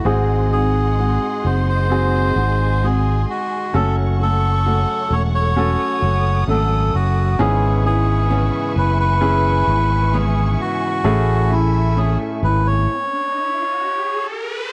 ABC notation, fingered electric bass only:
X:1
M:4/4
L:1/16
Q:1/4=65
K:G#phr
V:1 name="Fingered electric bass" clef=bass
G,,,4- G,,, z F,,,4 G,,,4 z2 | F,,,4- F,,, z E,,,3 z F,,,2 G,,,2 F,,,2 | G,,,4- G,,, z F,,,4 G,,,4 z2 | A,,,4- A,,, z G,,,2 z8 |]